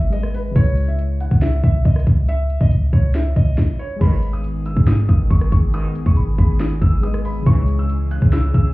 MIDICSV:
0, 0, Header, 1, 8, 480
1, 0, Start_track
1, 0, Key_signature, 5, "minor"
1, 0, Tempo, 431655
1, 619, Time_signature, 4, 2, 24, 8
1, 9713, End_track
2, 0, Start_track
2, 0, Title_t, "Synth bell"
2, 0, Program_c, 0, 98
2, 6141, Note_on_c, 0, 85, 88
2, 6369, Note_off_c, 0, 85, 0
2, 6859, Note_on_c, 0, 83, 93
2, 8255, Note_off_c, 0, 83, 0
2, 9713, End_track
3, 0, Start_track
3, 0, Title_t, "Felt piano"
3, 0, Program_c, 1, 0
3, 139, Note_on_c, 1, 75, 83
3, 326, Note_off_c, 1, 75, 0
3, 382, Note_on_c, 1, 71, 79
3, 567, Note_off_c, 1, 71, 0
3, 620, Note_on_c, 1, 73, 107
3, 958, Note_off_c, 1, 73, 0
3, 981, Note_on_c, 1, 76, 83
3, 1074, Note_off_c, 1, 76, 0
3, 1341, Note_on_c, 1, 78, 81
3, 1527, Note_off_c, 1, 78, 0
3, 1576, Note_on_c, 1, 76, 90
3, 1764, Note_off_c, 1, 76, 0
3, 1821, Note_on_c, 1, 76, 95
3, 2007, Note_off_c, 1, 76, 0
3, 2058, Note_on_c, 1, 75, 78
3, 2245, Note_off_c, 1, 75, 0
3, 2542, Note_on_c, 1, 76, 118
3, 2879, Note_off_c, 1, 76, 0
3, 2900, Note_on_c, 1, 75, 84
3, 2993, Note_off_c, 1, 75, 0
3, 3256, Note_on_c, 1, 73, 78
3, 3444, Note_off_c, 1, 73, 0
3, 3506, Note_on_c, 1, 76, 82
3, 3690, Note_off_c, 1, 76, 0
3, 3737, Note_on_c, 1, 75, 83
3, 4190, Note_off_c, 1, 75, 0
3, 4218, Note_on_c, 1, 73, 82
3, 4405, Note_off_c, 1, 73, 0
3, 4459, Note_on_c, 1, 83, 97
3, 4798, Note_off_c, 1, 83, 0
3, 4818, Note_on_c, 1, 87, 80
3, 4911, Note_off_c, 1, 87, 0
3, 5181, Note_on_c, 1, 88, 67
3, 5367, Note_off_c, 1, 88, 0
3, 5417, Note_on_c, 1, 87, 90
3, 5604, Note_off_c, 1, 87, 0
3, 5657, Note_on_c, 1, 87, 75
3, 5844, Note_off_c, 1, 87, 0
3, 5896, Note_on_c, 1, 85, 71
3, 6084, Note_off_c, 1, 85, 0
3, 6382, Note_on_c, 1, 87, 111
3, 6719, Note_off_c, 1, 87, 0
3, 6739, Note_on_c, 1, 85, 78
3, 6833, Note_off_c, 1, 85, 0
3, 7100, Note_on_c, 1, 83, 82
3, 7286, Note_off_c, 1, 83, 0
3, 7345, Note_on_c, 1, 87, 82
3, 7529, Note_off_c, 1, 87, 0
3, 7583, Note_on_c, 1, 88, 87
3, 7768, Note_off_c, 1, 88, 0
3, 7819, Note_on_c, 1, 87, 83
3, 8006, Note_off_c, 1, 87, 0
3, 8060, Note_on_c, 1, 83, 79
3, 8246, Note_off_c, 1, 83, 0
3, 8301, Note_on_c, 1, 85, 107
3, 8639, Note_off_c, 1, 85, 0
3, 8662, Note_on_c, 1, 88, 85
3, 8754, Note_off_c, 1, 88, 0
3, 9021, Note_on_c, 1, 90, 81
3, 9207, Note_off_c, 1, 90, 0
3, 9258, Note_on_c, 1, 88, 93
3, 9445, Note_off_c, 1, 88, 0
3, 9502, Note_on_c, 1, 88, 98
3, 9688, Note_off_c, 1, 88, 0
3, 9713, End_track
4, 0, Start_track
4, 0, Title_t, "Grand piano"
4, 0, Program_c, 2, 0
4, 0, Control_c, 2, 64, 127
4, 0, Note_on_c, 2, 75, 69
4, 110, Note_on_c, 2, 56, 55
4, 121, Note_off_c, 2, 75, 0
4, 129, Note_on_c, 2, 68, 53
4, 147, Note_on_c, 2, 71, 49
4, 164, Note_on_c, 2, 75, 61
4, 569, Note_on_c, 2, 49, 61
4, 588, Note_off_c, 2, 56, 0
4, 605, Note_on_c, 2, 56, 57
4, 614, Note_off_c, 2, 68, 0
4, 623, Note_off_c, 2, 71, 0
4, 632, Note_off_c, 2, 75, 0
4, 635, Control_c, 2, 64, 0
4, 641, Note_on_c, 2, 64, 62
4, 677, Note_on_c, 2, 73, 73
4, 794, Control_c, 2, 64, 127
4, 3995, Control_c, 2, 64, 0
4, 4386, Note_off_c, 2, 56, 0
4, 4390, Note_off_c, 2, 49, 0
4, 4403, Note_on_c, 2, 56, 59
4, 4426, Note_off_c, 2, 64, 0
4, 4439, Note_on_c, 2, 68, 63
4, 4444, Note_off_c, 2, 73, 0
4, 4475, Note_on_c, 2, 71, 63
4, 4511, Note_on_c, 2, 75, 75
4, 4668, Control_c, 2, 64, 127
4, 7747, Note_off_c, 2, 56, 0
4, 7765, Note_off_c, 2, 68, 0
4, 7783, Note_off_c, 2, 71, 0
4, 7792, Note_on_c, 2, 56, 55
4, 7801, Note_off_c, 2, 75, 0
4, 7809, Note_on_c, 2, 68, 51
4, 7828, Note_on_c, 2, 71, 51
4, 7845, Note_on_c, 2, 75, 61
4, 8250, Note_on_c, 2, 49, 65
4, 8269, Note_off_c, 2, 56, 0
4, 8286, Note_on_c, 2, 56, 62
4, 8295, Note_off_c, 2, 68, 0
4, 8304, Note_off_c, 2, 71, 0
4, 8313, Note_off_c, 2, 75, 0
4, 8315, Control_c, 2, 64, 0
4, 8322, Note_on_c, 2, 64, 65
4, 8358, Note_on_c, 2, 73, 74
4, 8525, Control_c, 2, 64, 127
4, 9713, Note_off_c, 2, 49, 0
4, 9713, Note_off_c, 2, 56, 0
4, 9713, Note_off_c, 2, 64, 0
4, 9713, Note_off_c, 2, 73, 0
4, 9713, End_track
5, 0, Start_track
5, 0, Title_t, "Analog synth pad"
5, 0, Program_c, 3, 89
5, 4460, Note_on_c, 3, 51, 82
5, 4461, Note_on_c, 3, 56, 76
5, 4461, Note_on_c, 3, 59, 75
5, 4461, Note_on_c, 3, 68, 90
5, 8262, Note_off_c, 3, 51, 0
5, 8262, Note_off_c, 3, 59, 0
5, 8262, Note_off_c, 3, 68, 0
5, 8300, Note_on_c, 3, 52, 82
5, 8300, Note_on_c, 3, 61, 74
5, 8300, Note_on_c, 3, 68, 89
5, 9713, Note_off_c, 3, 52, 0
5, 9713, Note_off_c, 3, 56, 0
5, 9713, Note_off_c, 3, 61, 0
5, 9713, Note_off_c, 3, 68, 0
5, 9713, End_track
6, 0, Start_track
6, 0, Title_t, "Brass ensemble"
6, 0, Program_c, 4, 61
6, 4460, Note_on_c, 4, 44, 104
6, 4460, Note_on_c, 4, 47, 92
6, 4460, Note_on_c, 4, 51, 121
6, 4613, Note_off_c, 4, 44, 0
6, 4613, Note_off_c, 4, 47, 0
6, 4613, Note_off_c, 4, 51, 0
6, 6379, Note_on_c, 4, 44, 96
6, 6379, Note_on_c, 4, 51, 111
6, 6380, Note_on_c, 4, 47, 101
6, 6532, Note_off_c, 4, 44, 0
6, 6532, Note_off_c, 4, 51, 0
6, 6533, Note_off_c, 4, 47, 0
6, 8300, Note_on_c, 4, 44, 98
6, 8300, Note_on_c, 4, 49, 98
6, 8300, Note_on_c, 4, 52, 108
6, 8453, Note_off_c, 4, 44, 0
6, 8453, Note_off_c, 4, 49, 0
6, 8453, Note_off_c, 4, 52, 0
6, 9713, End_track
7, 0, Start_track
7, 0, Title_t, "808-style bass"
7, 0, Program_c, 5, 38
7, 0, Note_on_c, 5, 32, 103
7, 591, Note_off_c, 5, 32, 0
7, 620, Note_on_c, 5, 37, 112
7, 1426, Note_off_c, 5, 37, 0
7, 1459, Note_on_c, 5, 37, 105
7, 1805, Note_off_c, 5, 37, 0
7, 1819, Note_on_c, 5, 37, 102
7, 2050, Note_off_c, 5, 37, 0
7, 2060, Note_on_c, 5, 37, 103
7, 2290, Note_off_c, 5, 37, 0
7, 2300, Note_on_c, 5, 37, 105
7, 2876, Note_off_c, 5, 37, 0
7, 2899, Note_on_c, 5, 37, 98
7, 3015, Note_off_c, 5, 37, 0
7, 3019, Note_on_c, 5, 37, 108
7, 3250, Note_off_c, 5, 37, 0
7, 3259, Note_on_c, 5, 37, 109
7, 3720, Note_off_c, 5, 37, 0
7, 3739, Note_on_c, 5, 37, 103
7, 3970, Note_off_c, 5, 37, 0
7, 4459, Note_on_c, 5, 32, 113
7, 5266, Note_off_c, 5, 32, 0
7, 5299, Note_on_c, 5, 44, 106
7, 5645, Note_off_c, 5, 44, 0
7, 5659, Note_on_c, 5, 32, 109
7, 5890, Note_off_c, 5, 32, 0
7, 5900, Note_on_c, 5, 32, 107
7, 6130, Note_off_c, 5, 32, 0
7, 6140, Note_on_c, 5, 32, 107
7, 6486, Note_off_c, 5, 32, 0
7, 6740, Note_on_c, 5, 32, 100
7, 6855, Note_off_c, 5, 32, 0
7, 6859, Note_on_c, 5, 32, 112
7, 7090, Note_off_c, 5, 32, 0
7, 7099, Note_on_c, 5, 32, 106
7, 7560, Note_off_c, 5, 32, 0
7, 7580, Note_on_c, 5, 32, 104
7, 8271, Note_off_c, 5, 32, 0
7, 8300, Note_on_c, 5, 37, 114
7, 9106, Note_off_c, 5, 37, 0
7, 9139, Note_on_c, 5, 37, 105
7, 9485, Note_off_c, 5, 37, 0
7, 9500, Note_on_c, 5, 37, 103
7, 9713, Note_off_c, 5, 37, 0
7, 9713, End_track
8, 0, Start_track
8, 0, Title_t, "Drums"
8, 141, Note_on_c, 9, 42, 71
8, 252, Note_off_c, 9, 42, 0
8, 260, Note_on_c, 9, 37, 95
8, 371, Note_off_c, 9, 37, 0
8, 382, Note_on_c, 9, 46, 60
8, 494, Note_off_c, 9, 46, 0
8, 619, Note_on_c, 9, 42, 83
8, 620, Note_on_c, 9, 36, 117
8, 730, Note_off_c, 9, 42, 0
8, 731, Note_off_c, 9, 36, 0
8, 860, Note_on_c, 9, 42, 68
8, 972, Note_off_c, 9, 42, 0
8, 1099, Note_on_c, 9, 42, 75
8, 1210, Note_off_c, 9, 42, 0
8, 1339, Note_on_c, 9, 42, 72
8, 1339, Note_on_c, 9, 46, 56
8, 1450, Note_off_c, 9, 42, 0
8, 1450, Note_off_c, 9, 46, 0
8, 1459, Note_on_c, 9, 36, 98
8, 1459, Note_on_c, 9, 42, 42
8, 1571, Note_off_c, 9, 36, 0
8, 1571, Note_off_c, 9, 42, 0
8, 1578, Note_on_c, 9, 42, 72
8, 1579, Note_on_c, 9, 38, 112
8, 1690, Note_off_c, 9, 42, 0
8, 1691, Note_off_c, 9, 38, 0
8, 1819, Note_on_c, 9, 36, 94
8, 1930, Note_off_c, 9, 36, 0
8, 2059, Note_on_c, 9, 42, 44
8, 2060, Note_on_c, 9, 36, 97
8, 2139, Note_off_c, 9, 42, 0
8, 2139, Note_on_c, 9, 42, 60
8, 2171, Note_off_c, 9, 36, 0
8, 2180, Note_on_c, 9, 37, 93
8, 2219, Note_off_c, 9, 42, 0
8, 2219, Note_on_c, 9, 42, 75
8, 2291, Note_off_c, 9, 37, 0
8, 2300, Note_on_c, 9, 36, 94
8, 2302, Note_off_c, 9, 42, 0
8, 2302, Note_on_c, 9, 42, 83
8, 2411, Note_off_c, 9, 36, 0
8, 2413, Note_off_c, 9, 42, 0
8, 2538, Note_on_c, 9, 42, 80
8, 2649, Note_off_c, 9, 42, 0
8, 2780, Note_on_c, 9, 42, 64
8, 2891, Note_off_c, 9, 42, 0
8, 2899, Note_on_c, 9, 36, 98
8, 3010, Note_off_c, 9, 36, 0
8, 3019, Note_on_c, 9, 42, 75
8, 3130, Note_off_c, 9, 42, 0
8, 3259, Note_on_c, 9, 36, 88
8, 3259, Note_on_c, 9, 42, 74
8, 3370, Note_off_c, 9, 36, 0
8, 3370, Note_off_c, 9, 42, 0
8, 3499, Note_on_c, 9, 42, 72
8, 3500, Note_on_c, 9, 38, 112
8, 3610, Note_off_c, 9, 42, 0
8, 3611, Note_off_c, 9, 38, 0
8, 3739, Note_on_c, 9, 36, 88
8, 3741, Note_on_c, 9, 42, 66
8, 3850, Note_off_c, 9, 36, 0
8, 3852, Note_off_c, 9, 42, 0
8, 3979, Note_on_c, 9, 36, 113
8, 3979, Note_on_c, 9, 38, 95
8, 4090, Note_off_c, 9, 38, 0
8, 4091, Note_off_c, 9, 36, 0
8, 4459, Note_on_c, 9, 42, 83
8, 4459, Note_on_c, 9, 49, 107
8, 4460, Note_on_c, 9, 36, 123
8, 4570, Note_off_c, 9, 42, 0
8, 4571, Note_off_c, 9, 36, 0
8, 4571, Note_off_c, 9, 49, 0
8, 4700, Note_on_c, 9, 42, 65
8, 4811, Note_off_c, 9, 42, 0
8, 4938, Note_on_c, 9, 42, 78
8, 5050, Note_off_c, 9, 42, 0
8, 5179, Note_on_c, 9, 42, 72
8, 5290, Note_off_c, 9, 42, 0
8, 5299, Note_on_c, 9, 36, 101
8, 5411, Note_off_c, 9, 36, 0
8, 5419, Note_on_c, 9, 38, 111
8, 5419, Note_on_c, 9, 42, 75
8, 5530, Note_off_c, 9, 42, 0
8, 5531, Note_off_c, 9, 38, 0
8, 5659, Note_on_c, 9, 36, 95
8, 5771, Note_off_c, 9, 36, 0
8, 5900, Note_on_c, 9, 36, 95
8, 5900, Note_on_c, 9, 42, 75
8, 6011, Note_off_c, 9, 36, 0
8, 6011, Note_off_c, 9, 42, 0
8, 6020, Note_on_c, 9, 37, 96
8, 6131, Note_off_c, 9, 37, 0
8, 6140, Note_on_c, 9, 36, 99
8, 6142, Note_on_c, 9, 42, 84
8, 6251, Note_off_c, 9, 36, 0
8, 6253, Note_off_c, 9, 42, 0
8, 6378, Note_on_c, 9, 42, 83
8, 6490, Note_off_c, 9, 42, 0
8, 6621, Note_on_c, 9, 42, 70
8, 6732, Note_off_c, 9, 42, 0
8, 6740, Note_on_c, 9, 36, 97
8, 6851, Note_off_c, 9, 36, 0
8, 6859, Note_on_c, 9, 42, 77
8, 6971, Note_off_c, 9, 42, 0
8, 7099, Note_on_c, 9, 36, 94
8, 7100, Note_on_c, 9, 42, 78
8, 7210, Note_off_c, 9, 36, 0
8, 7211, Note_off_c, 9, 42, 0
8, 7340, Note_on_c, 9, 42, 74
8, 7341, Note_on_c, 9, 38, 115
8, 7451, Note_off_c, 9, 42, 0
8, 7452, Note_off_c, 9, 38, 0
8, 7580, Note_on_c, 9, 36, 97
8, 7582, Note_on_c, 9, 42, 68
8, 7691, Note_off_c, 9, 36, 0
8, 7693, Note_off_c, 9, 42, 0
8, 7821, Note_on_c, 9, 42, 70
8, 7932, Note_off_c, 9, 42, 0
8, 7940, Note_on_c, 9, 37, 101
8, 8052, Note_off_c, 9, 37, 0
8, 8062, Note_on_c, 9, 46, 84
8, 8174, Note_off_c, 9, 46, 0
8, 8299, Note_on_c, 9, 42, 81
8, 8300, Note_on_c, 9, 36, 122
8, 8410, Note_off_c, 9, 42, 0
8, 8411, Note_off_c, 9, 36, 0
8, 8540, Note_on_c, 9, 42, 66
8, 8652, Note_off_c, 9, 42, 0
8, 8779, Note_on_c, 9, 42, 77
8, 8890, Note_off_c, 9, 42, 0
8, 9019, Note_on_c, 9, 42, 73
8, 9130, Note_off_c, 9, 42, 0
8, 9140, Note_on_c, 9, 36, 98
8, 9251, Note_off_c, 9, 36, 0
8, 9259, Note_on_c, 9, 42, 76
8, 9260, Note_on_c, 9, 38, 113
8, 9370, Note_off_c, 9, 42, 0
8, 9371, Note_off_c, 9, 38, 0
8, 9500, Note_on_c, 9, 36, 91
8, 9611, Note_off_c, 9, 36, 0
8, 9713, End_track
0, 0, End_of_file